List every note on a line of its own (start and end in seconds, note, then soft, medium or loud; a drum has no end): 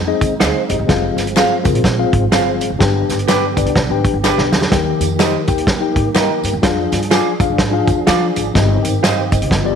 0.00 0.11 F2 medium
0.00 2.76 G#3 medium
0.00 2.76 C4 medium
0.00 0.85 D#4 medium
0.07 0.33 C4 medium
0.07 0.33 D#4 medium
0.07 0.33 G#4 medium
0.07 0.33 D#5 medium
0.21 0.35 D#2 medium
0.21 kick medium
0.21 closed hi-hat medium
0.21 tambourine soft
0.40 0.52 D2 medium
0.40 0.56 D#4 medium
0.40 0.68 G#4 soft
0.40 0.56 G#4 medium
0.40 0.57 C5 loud
0.40 0.67 F5 medium
0.40 snare loud
0.40 clap loud
0.40 closed hi-hat medium
0.40 tambourine medium
0.69 0.77 G1 medium
0.69 1.15 G4 medium
0.69 1.15 D#5 medium
0.69 closed hi-hat medium
0.69 tambourine medium
0.79 0.86 F#1 medium
0.88 1.10 F1 medium
0.88 2.79 F3 medium
0.88 1.25 C4 medium
0.88 1.25 F4 medium
0.88 1.26 G#4 medium
0.88 1.26 F5 medium
0.88 kick medium
0.88 snare loud
0.88 closed hi-hat medium
0.88 tambourine medium
1.17 1.41 G1 medium
1.17 snare soft
1.17 closed hi-hat medium
1.17 tambourine medium
1.27 closed hi-hat soft
1.36 1.57 C4 medium
1.36 1.57 F4 medium
1.36 1.52 G#4 medium
1.36 1.57 G#4 medium
1.36 1.52 C5 medium
1.36 1.58 F5 loud
1.36 1.53 F5 loud
1.36 snare loud
1.36 clap medium
1.36 closed hi-hat medium
1.36 tambourine medium
1.63 1.74 F1 medium
1.63 1.86 C4 medium
1.63 1.86 F4 medium
1.63 1.86 G#4 medium
1.63 1.87 A#4 medium
1.63 kick medium
1.63 closed hi-hat medium
1.63 tambourine medium
1.74 2.02 A#1 medium
1.74 closed hi-hat medium
1.84 kick medium
1.84 snare medium
1.84 closed hi-hat medium
1.84 tambourine soft
1.99 2.24 C4 medium
1.99 2.24 F4 medium
1.99 2.24 G#4 medium
1.99 2.25 F5 medium
2.13 2.27 G#1 medium
2.13 kick medium
2.13 closed hi-hat medium
2.32 2.60 G1 medium
2.32 2.69 C4 medium
2.32 2.70 F4 medium
2.32 2.48 G#4 medium
2.32 2.70 G#4 medium
2.32 2.48 C5 medium
2.32 2.70 F5 medium
2.32 2.48 F5 medium
2.32 snare loud
2.32 clap medium
2.32 closed hi-hat medium
2.32 tambourine medium
2.61 closed hi-hat medium
2.61 tambourine medium
2.70 2.78 F1 medium
2.79 3.01 G1 medium
2.79 3.53 G2 medium
2.79 4.71 D3 medium
2.79 4.71 B3 medium
2.79 3.17 D4 medium
2.79 3.17 G4 medium
2.79 6.60 G4 medium
2.79 3.17 B4 medium
2.79 3.17 G5 medium
2.79 kick medium
2.79 snare loud
2.79 closed hi-hat medium
2.79 tambourine soft
3.09 3.33 G#1 medium
3.09 snare soft
3.09 closed hi-hat medium
3.09 tambourine medium
3.19 closed hi-hat soft
3.28 3.49 D4 medium
3.28 3.43 G4 medium
3.28 3.49 G4 medium
3.28 3.49 B4 medium
3.28 3.44 B4 medium
3.28 3.44 D5 medium
3.28 3.50 G5 loud
3.28 snare loud
3.28 clap medium
3.28 closed hi-hat medium
3.28 tambourine medium
3.57 3.64 G1 medium
3.57 3.78 D4 medium
3.57 3.79 G4 medium
3.57 3.79 B4 medium
3.57 3.79 D5 medium
3.57 kick medium
3.57 closed hi-hat medium
3.57 tambourine medium
3.66 3.73 C2 medium
3.66 closed hi-hat medium
3.76 3.86 B1 medium
3.76 kick medium
3.76 snare loud
3.76 closed hi-hat medium
3.76 tambourine soft
3.90 4.01 G#1 medium
3.90 4.16 D4 medium
3.90 4.16 G4 medium
3.90 4.16 B4 medium
3.90 4.17 G5 medium
4.05 kick medium
4.05 closed hi-hat medium
4.14 4.31 G1 medium
4.24 4.61 D4 medium
4.24 4.39 G4 medium
4.24 4.61 G4 medium
4.24 4.31 G#4 soft
4.24 4.40 B4 medium
4.24 4.40 D5 medium
4.24 4.62 G5 medium
4.24 snare medium
4.24 clap medium
4.24 tambourine loud
4.31 4.65 B4 medium
4.38 4.48 B1 medium
4.38 snare medium
4.52 4.67 E2 medium
4.52 snare medium
4.52 tambourine medium
4.62 snare medium
4.70 4.93 D#2 medium
4.70 5.44 D#3 medium
4.70 6.62 D#3 medium
4.70 6.62 A#3 medium
4.70 5.08 D#4 medium
4.70 5.09 G4 medium
4.70 5.09 A#4 medium
4.70 5.09 G5 medium
4.70 kick medium
4.70 snare loud
4.70 closed hi-hat medium
4.70 tambourine medium
5.00 5.35 F2 medium
5.00 closed hi-hat medium
5.00 tambourine medium
5.19 5.40 D#4 medium
5.19 5.35 G4 medium
5.19 5.40 G4 medium
5.19 5.40 A#4 medium
5.19 5.35 A#4 medium
5.19 5.40 C5 loud
5.19 5.36 D#5 medium
5.19 snare loud
5.19 clap medium
5.19 closed hi-hat medium
5.19 tambourine medium
5.47 5.83 D#2 medium
5.47 5.70 D#4 medium
5.47 5.70 G4 medium
5.47 5.70 A#4 medium
5.47 5.70 G5 medium
5.47 kick medium
5.47 closed hi-hat medium
5.47 tambourine medium
5.58 closed hi-hat medium
5.67 kick medium
5.67 snare loud
5.67 closed hi-hat medium
5.80 6.07 D#4 medium
5.80 6.07 G4 medium
5.80 6.07 A#4 medium
5.80 6.08 G5 medium
5.96 6.10 G#2 medium
5.96 kick medium
5.96 closed hi-hat medium
6.14 6.26 G2 medium
6.14 6.52 D#4 medium
6.14 6.52 G4 medium
6.14 6.31 G4 medium
6.14 6.53 A#4 medium
6.14 6.31 A#4 medium
6.14 6.32 D#5 medium
6.14 6.23 F5 medium
6.14 snare loud
6.14 clap medium
6.14 closed hi-hat medium
6.14 tambourine medium
6.21 6.56 G5 medium
6.43 6.51 G2 medium
6.43 closed hi-hat medium
6.43 tambourine medium
6.53 6.61 F#2 medium
6.62 6.84 F2 medium
6.62 8.53 F3 medium
6.62 8.53 D4 medium
6.62 7.00 D4 medium
6.62 7.00 F4 medium
6.62 8.53 G#4 medium
6.62 7.01 G#4 medium
6.62 7.01 F5 medium
6.62 kick loud
6.62 snare loud
6.62 closed hi-hat medium
6.62 tambourine soft
6.92 7.17 G2 medium
6.92 snare soft
6.92 closed hi-hat medium
6.92 tambourine medium
7.02 closed hi-hat soft
7.11 7.32 D4 medium
7.11 7.27 F4 medium
7.11 7.32 F4 medium
7.11 7.27 G#4 medium
7.11 7.32 G#4 medium
7.11 7.27 D5 medium
7.11 7.32 G#5 loud
7.11 snare loud
7.11 clap medium
7.11 closed hi-hat medium
7.11 tambourine medium
7.39 7.47 F2 medium
7.39 7.62 D4 medium
7.39 7.62 F4 medium
7.39 7.62 G#4 medium
7.39 7.62 F5 medium
7.39 kick medium
7.39 closed hi-hat medium
7.39 tambourine medium
7.50 7.78 G#2 medium
7.58 kick medium
7.58 snare loud
7.58 closed hi-hat medium
7.58 tambourine soft
7.71 7.98 D4 medium
7.71 7.99 F4 medium
7.71 7.99 G#4 medium
7.71 7.99 F5 loud
7.87 8.02 F2 medium
7.87 kick medium
7.87 closed hi-hat medium
7.87 tambourine soft
8.05 8.29 F3 loud
8.05 8.44 D4 medium
8.05 8.44 F4 medium
8.05 8.23 F4 medium
8.05 8.44 G#4 medium
8.05 8.23 G#4 medium
8.05 8.23 D5 medium
8.05 8.44 F5 medium
8.05 snare loud
8.05 clap medium
8.05 closed hi-hat medium
8.05 tambourine medium
8.36 8.50 G#1 medium
8.36 closed hi-hat medium
8.36 tambourine medium
8.54 8.76 G1 loud
8.54 9.28 G2 medium
8.54 9.50 D#3 medium
8.54 8.92 C4 medium
8.54 9.51 C4 medium
8.54 8.92 D#4 medium
8.54 9.75 G4 medium
8.54 8.84 G4 medium
8.54 8.84 D#5 medium
8.54 kick medium
8.54 snare medium
8.54 closed hi-hat medium
8.54 tambourine medium
8.83 9.09 G#1 medium
8.83 9.02 A#4 medium
8.83 9.02 G5 medium
8.83 closed hi-hat medium
8.83 tambourine medium
9.03 9.19 G4 medium
9.03 9.19 C5 medium
9.03 9.20 D#5 medium
9.03 9.30 F5 medium
9.03 snare loud
9.03 clap medium
9.03 closed hi-hat medium
9.03 tambourine medium
9.32 9.39 G1 medium
9.32 9.64 G4 soft
9.32 9.75 D#5 medium
9.32 kick medium
9.32 closed hi-hat medium
9.32 tambourine medium
9.42 9.49 C2 medium
9.42 closed hi-hat medium
9.51 9.72 G1 medium
9.51 9.75 G2 medium
9.51 9.75 F3 medium
9.51 9.75 B3 medium
9.51 kick medium
9.51 snare loud
9.51 closed hi-hat medium
9.51 tambourine soft
9.64 9.75 B3 medium
9.64 9.75 F4 medium
9.64 9.75 G4 medium
9.64 9.75 D5 loud